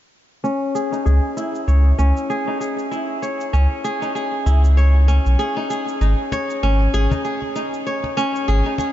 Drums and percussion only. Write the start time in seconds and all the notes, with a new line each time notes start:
0.45 shaker
0.76 shaker
0.93 shaker
1.06 shaker
1.37 shaker
1.55 shaker
1.68 shaker
1.99 shaker
2.17 shaker
2.30 shaker
2.61 shaker
2.79 shaker
2.92 shaker
3.23 shaker
3.41 shaker
3.54 shaker
3.85 shaker
4.03 shaker
4.16 shaker
4.47 shaker
4.64 shaker
4.78 shaker
5.09 shaker
5.26 shaker
5.39 shaker
5.70 shaker
5.88 shaker
6.01 shaker
6.32 cajon slap, shaker
6.50 shaker
6.63 shaker
6.80 cajon slap
6.94 shaker
7.11 cajon bass, cajon slap, shaker
7.25 shaker
7.42 cajon slap
7.56 shaker
7.74 shaker
7.87 shaker
8.04 cajon slap
8.18 shaker
8.36 shaker
8.49 shaker
8.78 cajon slap, shaker